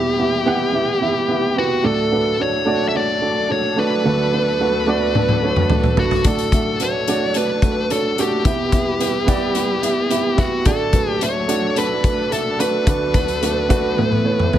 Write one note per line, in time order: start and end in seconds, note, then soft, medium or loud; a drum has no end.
0.00 1.80 E2 medium
0.00 1.80 B2 medium
0.00 1.82 E3 medium
0.00 1.82 G3 medium
0.00 0.18 B3 medium
0.00 1.82 B3 medium
0.00 0.19 E4 medium
0.00 0.19 G4 medium
0.00 1.58 G4 medium
0.00 1.82 G4 medium
0.00 0.20 E5 medium
0.18 0.38 B3 medium
0.18 0.38 E4 medium
0.18 0.39 G4 medium
0.18 0.39 E5 medium
0.46 0.66 B3 medium
0.46 0.66 E4 medium
0.46 0.66 G4 medium
0.46 0.67 F#5 loud
0.73 0.93 B3 medium
0.73 0.93 E4 medium
0.73 0.94 G4 medium
0.73 0.94 E5 medium
1.01 1.21 B3 medium
1.01 1.21 E4 medium
1.01 1.21 G4 medium
1.01 1.22 E5 medium
1.28 1.48 B3 medium
1.28 1.49 E4 medium
1.28 1.49 G4 medium
1.28 1.49 E5 medium
1.56 1.76 B3 medium
1.56 1.76 E4 medium
1.56 1.83 F#4 medium
1.56 1.77 G4 medium
1.56 1.77 B4 medium
1.83 4.00 D2 medium
1.83 4.00 A2 medium
1.83 8.41 F#3 medium
1.83 2.03 A3 medium
1.83 4.02 A3 medium
1.83 2.04 D4 medium
1.83 6.21 D4 medium
1.83 2.04 F#4 medium
1.83 8.41 A4 medium
1.83 2.41 A4 medium
1.83 2.04 D5 medium
2.10 2.31 A3 medium
2.10 2.31 D4 medium
2.10 2.31 F#4 medium
2.10 2.32 B4 medium
2.38 2.58 A3 medium
2.38 2.59 D4 medium
2.38 2.59 F#4 medium
2.38 2.88 C#5 medium
2.38 2.59 D5 medium
2.65 2.85 A3 medium
2.65 2.86 D4 medium
2.65 2.86 F#4 medium
2.65 2.86 D5 medium
2.88 2.95 E5 medium
2.93 3.13 A3 medium
2.93 3.14 D4 medium
2.93 3.14 F#4 medium
2.93 3.14 C#5 medium
2.93 3.51 D5 medium
3.21 3.41 A3 medium
3.21 3.41 D4 medium
3.21 3.41 F#4 medium
3.21 3.42 D5 medium
3.49 3.69 A3 medium
3.49 3.69 D4 medium
3.49 3.69 F#4 soft
3.49 3.79 C#5 medium
3.49 3.69 D5 medium
3.76 3.96 A3 medium
3.76 3.96 D4 medium
3.76 3.97 F#4 medium
3.76 6.05 B4 medium
3.76 3.97 D5 medium
4.04 6.21 D2 medium
4.04 6.23 D2 medium
4.04 6.21 D3 medium
4.04 4.24 A3 medium
4.04 6.23 B3 medium
4.04 4.24 D4 medium
4.04 4.24 F#4 medium
4.04 4.25 B4 medium
4.32 4.51 A3 medium
4.32 4.52 D4 medium
4.32 4.52 F#4 medium
4.32 4.53 B4 medium
4.59 4.79 A3 medium
4.59 4.79 D4 medium
4.59 4.80 F#4 medium
4.59 4.80 B4 medium
4.86 5.06 A3 medium
4.86 5.07 D4 medium
4.86 5.07 F#4 medium
4.86 5.08 D5 loud
5.14 5.34 A3 medium
5.14 5.34 D4 medium
5.14 5.35 F#4 medium
5.14 5.35 B4 medium
5.14 high tom soft
5.29 high tom soft
5.42 5.62 A3 medium
5.42 5.62 D4 medium
5.42 5.63 F#4 medium
5.42 5.63 C#5 medium
5.56 mid tom soft
5.70 5.89 A3 medium
5.70 5.90 D4 medium
5.70 5.90 F#4 medium
5.70 5.90 D5 medium
5.70 mid tom medium
5.84 mid tom medium
5.97 6.17 A3 medium
5.97 6.17 D4 medium
5.97 6.17 F#4 medium
5.97 6.27 F#4 medium
5.97 6.18 B4 medium
5.97 floor tom medium
6.11 floor tom medium
6.24 8.42 D2 medium
6.24 8.42 A2 medium
6.24 6.44 A3 medium
6.24 8.43 A3 medium
6.24 6.45 D4 medium
6.24 8.43 D4 medium
6.24 6.45 F#4 medium
6.24 6.83 A4 medium
6.24 6.45 D5 medium
6.24 kick medium
6.24 closed hi-hat medium
6.39 closed hi-hat soft
6.52 6.72 A3 medium
6.52 6.72 D4 medium
6.52 6.72 F#4 medium
6.52 6.73 E5 medium
6.52 kick medium
6.52 closed hi-hat medium
6.79 6.99 A3 medium
6.79 6.99 D4 medium
6.79 7.00 F#4 medium
6.79 7.00 B4 medium
6.79 7.38 C#5 medium
6.79 closed hi-hat medium
7.07 7.27 A3 medium
7.07 7.27 D4 medium
7.07 7.28 F#4 medium
7.07 7.28 D5 medium
7.07 closed hi-hat medium
7.34 7.54 A3 medium
7.34 7.55 D4 medium
7.34 7.55 F#4 medium
7.34 7.92 B4 medium
7.34 7.56 D5 medium
7.34 closed hi-hat medium
7.62 7.82 A3 medium
7.62 7.83 D4 medium
7.62 7.83 F#4 medium
7.62 7.83 B4 medium
7.62 kick medium
7.62 closed hi-hat medium
7.89 8.09 A3 medium
7.89 8.10 D4 soft
7.89 8.10 F#4 medium
7.89 8.19 A4 medium
7.89 8.11 C#5 medium
7.89 closed hi-hat medium
8.18 8.37 A3 medium
8.18 8.38 D4 medium
8.18 8.38 F#4 medium
8.18 10.46 G4 medium
8.18 8.38 A4 medium
8.18 closed hi-hat medium
8.45 10.62 E2 medium
8.45 10.62 B2 medium
8.45 10.63 G3 medium
8.45 8.65 B3 medium
8.45 10.64 B3 medium
8.45 10.64 E4 medium
8.45 8.65 E4 medium
8.45 8.65 G4 medium
8.45 10.64 B4 medium
8.45 8.66 E5 medium
8.45 kick loud
8.45 closed hi-hat medium
8.72 8.92 B3 medium
8.72 8.93 E4 medium
8.72 8.93 G4 medium
8.72 8.93 E5 medium
8.72 kick medium
8.72 closed hi-hat medium
8.99 9.20 B3 medium
8.99 9.20 E4 medium
8.99 9.20 G4 medium
8.99 9.21 B4 medium
8.99 closed hi-hat medium
9.26 9.47 B3 loud
9.26 9.48 E4 medium
9.26 9.48 G4 medium
9.26 9.48 D5 loud
9.26 kick medium
9.26 closed hi-hat medium
9.55 9.75 B3 medium
9.55 9.75 E4 medium
9.55 9.76 G4 medium
9.55 9.76 G5 medium
9.55 closed hi-hat medium
9.82 10.02 B3 medium
9.82 10.02 E4 medium
9.82 10.03 G4 medium
9.82 10.03 E5 medium
9.82 closed hi-hat medium
10.09 10.30 B3 medium
10.09 10.30 E4 medium
10.09 10.31 G4 medium
10.09 10.31 E5 medium
10.09 closed hi-hat medium
10.36 10.57 B3 medium
10.36 10.57 E4 medium
10.36 10.65 F#4 medium
10.36 10.58 G4 medium
10.36 10.58 E5 medium
10.36 kick medium
10.36 closed hi-hat soft
10.65 12.83 D2 medium
10.65 12.83 A2 medium
10.65 12.85 F#3 medium
10.65 10.85 A3 medium
10.65 12.85 A3 medium
10.65 10.86 D4 medium
10.65 13.94 D4 medium
10.65 10.86 F#4 medium
10.65 14.59 A4 medium
10.65 11.10 A4 medium
10.65 10.86 D5 medium
10.65 kick medium
10.65 closed hi-hat medium
10.93 11.13 A3 medium
10.93 11.13 D4 medium
10.93 11.14 F#4 medium
10.93 11.14 B4 medium
10.93 kick medium
10.93 closed hi-hat medium
11.10 11.23 G4 medium
11.20 11.40 A3 medium
11.20 11.41 D4 medium
11.20 11.41 F#4 medium
11.20 11.79 C#5 medium
11.20 11.41 E5 medium
11.20 closed hi-hat medium
11.48 11.68 A3 medium
11.48 11.68 D4 medium
11.48 11.69 F#4 medium
11.48 11.69 D5 medium
11.48 closed hi-hat medium
11.76 11.96 A3 medium
11.76 11.96 D4 medium
11.76 11.97 F#4 medium
11.76 11.97 A4 medium
11.76 12.33 B4 medium
11.76 closed hi-hat medium
12.03 12.23 A3 medium
12.03 12.24 D4 medium
12.03 12.24 F#4 medium
12.03 12.24 B4 medium
12.03 kick medium
12.03 closed hi-hat medium
12.30 12.51 A3 medium
12.30 12.51 D4 medium
12.30 12.51 F#4 medium
12.30 12.60 A4 medium
12.30 12.52 E5 medium
12.30 closed hi-hat medium
12.58 12.79 A3 medium
12.58 12.79 D4 medium
12.58 12.79 F#4 medium
12.58 12.80 B4 medium
12.58 14.59 B4 medium
12.58 closed hi-hat medium
12.86 13.96 D2 medium
12.86 13.94 D2 medium
12.86 13.94 D3 medium
12.86 13.96 F#3 medium
12.86 13.06 A3 medium
12.86 14.59 B3 medium
12.86 13.07 D4 medium
12.86 13.07 F#4 medium
12.86 13.07 B4 medium
12.86 kick loud
12.86 closed hi-hat medium
13.14 13.34 A3 medium
13.14 13.34 D4 medium
13.14 13.35 F#4 medium
13.14 13.35 B4 medium
13.14 kick medium
13.14 closed hi-hat medium
13.28 closed hi-hat soft
13.41 13.61 A3 medium
13.41 13.62 D4 medium
13.41 13.62 F#4 medium
13.41 13.62 B4 medium
13.41 closed hi-hat medium
13.69 13.89 A3 loud
13.69 13.89 D4 medium
13.69 13.90 F#4 medium
13.69 13.90 B4 loud
13.69 kick medium
13.69 closed hi-hat medium
13.96 14.59 A2 medium
13.96 14.59 E3 medium
13.96 14.16 A3 medium
13.96 14.59 A3 medium
13.96 14.17 B3 medium
13.96 14.17 E4 medium
13.96 14.18 B4 medium
13.96 high tom soft
14.12 high tom soft
14.24 14.44 A3 medium
14.24 14.45 B3 medium
14.24 14.45 E4 medium
14.24 14.45 C#5 medium
14.39 mid tom soft
14.52 14.59 A3 medium
14.52 14.59 B3 medium
14.52 14.59 E4 medium
14.52 14.59 B4 medium
14.52 mid tom medium